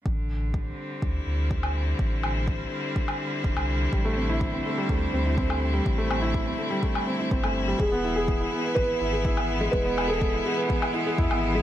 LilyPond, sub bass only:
\new Staff \with { instrumentName = "Sub bass" } { \clef bass \time 4/4 \key a \minor \tempo 4 = 124 a,,4. r8 d,16 r16 d,4. | a,,4. r4. e,,16 c,8. | a,,4. r8 d,16 r16 d,4. | a,,4. r4. g,,4 |
e,,4. r8 gis,,16 r16 gis,,4. | e,,4. r4. e,16 gis,,8. | }